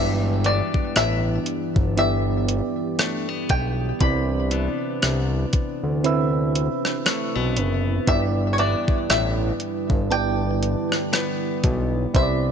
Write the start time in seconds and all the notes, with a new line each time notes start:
Already playing: G1 G2 E3 B3 D4 E4 G4 D5
0.44 E3 B3 D4 D5, closed hi-hat
0.74 kick
0.96 A1 E5, cross-stick, closed hi-hat
1.46 closed hi-hat
1.76 G1, kick
1.97 B3 E4 G4 D5 E5, closed hi-hat
2.49 closed hi-hat
2.99 A3, cross-stick, closed hi-hat
3.29 B3
3.49 B1 G5, kick, closed hi-hat
4.00 C2 C3 C4 E4 B4 D5 B5, kick, closed hi-hat
4.51 E3 B3 D4, closed hi-hat
5.02 C2, cross-stick, closed hi-hat
5.53 kick, closed hi-hat
5.83 D2
6.04 C4 E4 B4 E5, closed hi-hat
6.55 closed hi-hat
6.85 cross-stick
7.06 A3, cross-stick, closed hi-hat
7.36 B1 B3
7.57 F#1, closed hi-hat
8.07 G1 G2 D3 G3 B3 E4 G4 B4 D5 E5, kick, closed hi-hat
8.53 C#5
8.58 E3 B3 D4 D5 E5, closed hi-hat
8.88 kick
9.10 A1 E5, cross-stick, closed hi-hat
9.60 closed hi-hat
9.90 G1, kick
10.10 B3 E4 G4 D5 G5 A5, closed hi-hat
10.63 closed hi-hat
10.92 cross-stick
11.13 B3, cross-stick, closed hi-hat
11.64 B1, kick, closed hi-hat
12.14 C2 D3 E3 C4 D4 E4 B4 C5 E5, kick, closed hi-hat
12.22 D5